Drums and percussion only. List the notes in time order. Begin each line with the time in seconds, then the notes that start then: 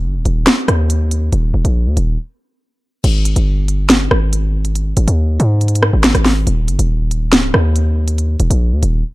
0.25 closed hi-hat
0.47 snare, closed hi-hat
0.68 cross-stick, closed hi-hat
0.90 closed hi-hat
1.11 closed hi-hat
1.33 closed hi-hat
1.65 closed hi-hat
1.97 closed hi-hat
3.04 closed hi-hat, crash
3.25 closed hi-hat
3.36 closed hi-hat
3.68 closed hi-hat
3.90 snare, closed hi-hat
4.11 cross-stick
4.33 closed hi-hat
4.65 closed hi-hat
4.75 closed hi-hat
4.97 closed hi-hat
5.08 closed hi-hat
5.40 closed hi-hat
5.61 closed hi-hat
5.68 closed hi-hat
5.75 closed hi-hat
5.83 cross-stick
6.04 snare, closed hi-hat
6.15 cross-stick, closed hi-hat
6.25 snare, open hi-hat
6.47 closed hi-hat
6.68 closed hi-hat
6.79 closed hi-hat
7.11 closed hi-hat
7.33 snare, closed hi-hat
7.54 cross-stick
7.76 closed hi-hat
8.08 closed hi-hat
8.18 closed hi-hat
8.40 closed hi-hat
8.51 closed hi-hat
8.83 closed hi-hat